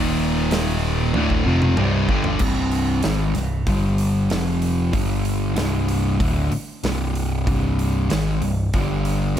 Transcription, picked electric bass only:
Already playing: D#1
1.14 D1
1.46 F1
1.77 C1
2.09 G1
2.40 C1
3.04 G#1
3.35 C1
3.67 G1
4.30 F1
4.94 G1
5.57 C1
6.20 D1
6.52 muted picked electric bass stroke
6.84 C1
7.47 C1
8.10 G#1
8.42 C1
8.74 G1

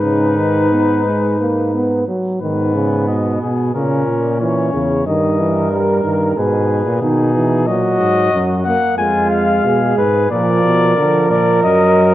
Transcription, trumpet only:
Already playing: B4
2.42 B4
3.09 D#5
3.42 G#4
3.75 A#4
4.41 C#5
5.07 D#5
5.72 A#4
6.38 B4
7.02 G#4
7.67 D#5
8.65 F#5
8.98 G#5
9.31 F5
9.98 B4
10.31 D5
11.31 D5
11.63 D#5

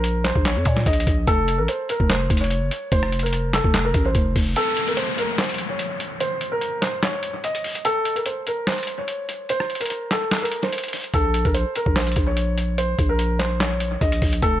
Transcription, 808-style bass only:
Already playing: A#1
0.36 A#1
0.56 F2
0.66 A#2
0.86 A#1
1.07 A#1
1.27 F1
1.59 A1
2.00 F1
2.30 F1
2.62 F#1
2.92 F1
3.64 F1
3.95 A1
4.15 F1
4.36 F1
11.14 A#1
11.45 A#1
11.86 A#1
12.16 A#1
12.99 A#1
14.01 A#1
14.22 A#1
14.42 F1

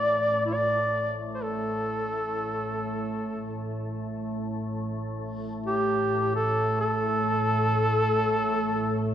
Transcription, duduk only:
Already playing: D5
0.46 E4
0.54 D5
1.34 C5
1.43 A4
5.66 G4
6.36 A4
6.81 A4

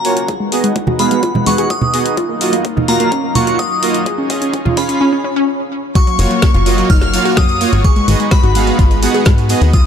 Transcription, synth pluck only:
Already playing: F#4
0.28 G#4
0.40 G#3
0.64 G#3
0.76 G#3
0.88 F#4
0.99 G#3
1.11 G#3
1.23 F4
1.35 G#3
1.47 G#3
1.58 G#4
2.17 F4
2.29 A#3
2.53 A#3
2.65 A#3
2.77 D#4
2.88 A#3
3.00 A#3
3.12 C#4
3.24 A#3
3.36 A#3
3.47 F4
4.06 G#4
4.18 C#4
4.42 C#4
4.54 C#4
4.65 F4
4.77 C#4
4.89 C#4
5.01 C#4
5.13 C#4
5.24 C#4
5.36 C#4
5.95 F#4
6.07 F#3
6.31 F#3
6.42 F#3
6.54 F4
6.66 F#3
6.78 F#3
6.90 D#4
7.02 F#3
7.14 F#3
7.25 F#4
7.84 G#4
7.96 G#3
8.20 G#3
8.32 G#3
8.43 F#4
8.55 G#3
8.67 G#3
8.79 F4
8.91 G#3
9.03 G#3
9.14 G#4
9.73 F4

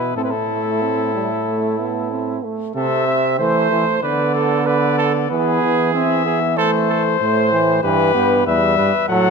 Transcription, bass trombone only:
Already playing: B2
0.16 A2
2.76 C3
3.39 E3
3.71 E3
4.04 D3
5.30 E3
5.62 E3
7.21 A2
7.84 G2
8.15 G2
8.47 E2
8.78 G2
9.10 A2

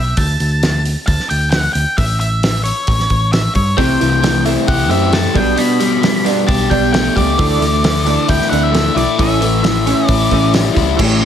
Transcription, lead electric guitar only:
Already playing: E5
0.17 A5
1.07 A5
1.30 G5
1.51 F#5
1.73 G5
1.97 E5
2.20 E5
2.64 C#5
3.33 E5
3.55 C#5
3.77 G5
4.68 F#5
4.91 E5
5.13 A5
5.37 G5
5.58 B5
6.47 A5
6.70 G5
6.93 G5
7.16 D5
8.29 G5
8.50 F#5
8.63 E5
8.96 D5
9.20 E5
10.08 D5

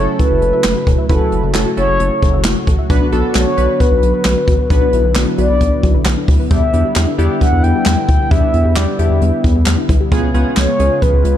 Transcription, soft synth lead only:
Already playing: C#5
0.19 B4
1.10 A4
1.77 C#5
3.35 C#5
3.80 B4
4.70 B4
5.38 D5
6.51 E5
7.41 F#5
7.63 G5
8.08 G5
8.31 E5
8.76 D5
8.99 E5
10.57 C#5
11.02 B4

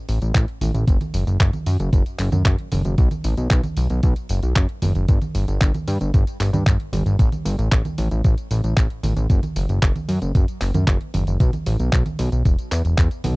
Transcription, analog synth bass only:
0.09 A1
0.22 A1
0.35 A1
0.61 A1
0.74 A1
0.87 F#1
1.14 F#1
1.27 F#1
1.40 F#1
1.66 F#2
1.80 F#1
1.93 F#1
2.19 F#1
2.32 F#2
2.45 F#1
2.72 F#1
2.85 F#1
2.98 B1
3.24 A1
3.37 B1
3.51 B1
3.77 B1
3.90 B1
4.03 B1
4.30 F#1
4.43 B1
4.56 F#1
4.82 F#1
4.95 F#1
5.09 G1
5.35 G1
5.48 G1
5.61 G1
5.88 G2
6.01 G1
6.14 G1
6.40 G1
6.53 G2
6.67 G1
6.93 G1
7.06 G1
7.19 A1
7.45 G1
7.59 A1
7.72 A1
7.98 A1
8.11 A1
8.25 A1
8.51 A1
8.64 A1
8.77 A1
9.03 A1
9.16 A1
9.30 F#1
9.56 F#1
9.69 F#1
9.82 F#1
10.09 F#2
10.22 F#1
10.35 F#1
10.61 F#1
10.74 F#2
10.88 F#1
11.14 F#1
11.27 F#1
11.40 B1
11.67 A1
11.80 B1
11.93 B1
12.19 B1
12.32 B1
12.45 E1
12.72 E2
12.85 E1
12.98 E2
13.24 B1

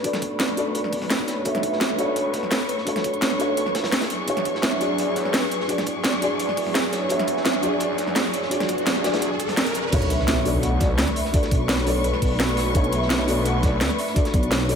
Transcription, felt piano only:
Already playing: D4 F#4 A4 C#5 D5
0.03 D4 F#4 A4 D5
0.55 D4 F#4 A4 D5
1.44 D4 F#4 A4 C#5
1.97 D4 F#4 A4 C#5
2.85 D4 F#4 A4 C#5
3.38 D4 F#4 A4 C#5
4.26 D4 F#4 G#4 C#5
4.79 D4 F#4 G#4 D5
5.68 D4 F#4 G#4 D5
6.20 D4 F#4 G#4 D5
7.09 D4 F#4 G#4 C#5
7.61 D4 F#4 G#4 D5
8.50 D4 F#4 G#4 D5
9.03 D4 F#4 G#4 D5
9.91 D4 F#4 A4 C#5
10.44 D4 F#4 A4 D5
11.32 D4 F#4 A4 D5
11.85 D4 F#4 A4 D5
12.73 D4 F#4 A4 C#5
13.26 D4 F#4 A4 D5
14.14 D4 F#4 A4 D5
14.67 D4 F#4 A4 D5

